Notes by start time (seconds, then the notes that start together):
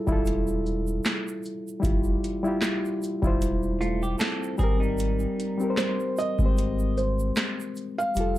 Already playing: G3 E4 F4 G#4 A4
0.07 E1 G3 E4 F4, kick, shaker
0.12 A4
0.25 closed hi-hat, shaker
0.47 shaker
0.66 shaker
0.87 shaker
1.04 snare, clap, closed hi-hat, shaker
1.28 shaker
1.43 shaker
1.45 shaker
1.68 shaker
1.80 F1 G3 E4 F4, kick, shaker
1.85 G4, closed hi-hat
2.04 shaker
2.24 closed hi-hat, shaker
2.43 G3 E4 F4, shaker
2.48 G4
2.61 snare, clap, closed hi-hat, shaker
2.85 shaker
3.02 shaker
3.04 shaker
3.22 E1 G3 E4 F4, kick, shaker
3.27 C5
3.42 closed hi-hat, shaker
3.63 shaker
3.81 A3 F4, shaker
4.03 G4, shaker
4.19 C4 A4, snare, clap, closed hi-hat, shaker
4.43 shaker
4.58 G#1 G3 C4 G#4, kick, shaker
4.61 G4 A#4, shaker
4.80 G3 D#4, shaker
4.98 closed hi-hat, shaker
5.19 shaker
5.40 closed hi-hat, shaker
5.58 G3 C4 G4, shaker
5.63 A#4
5.70 C5
5.77 C5, snare, clap, closed hi-hat, shaker
6.00 shaker
6.17 D#5, shaker
6.20 shaker
6.39 G#1 G#3 C4, kick, shaker
6.44 G4 C5
6.57 closed hi-hat, shaker
6.79 shaker
6.98 C5, shaker
7.19 shaker
7.36 snare, clap, closed hi-hat, shaker
7.60 shaker
7.75 shaker
7.77 shaker
7.98 F5, shaker
8.15 F1 G3 F4 G4, closed hi-hat, shaker
8.20 A4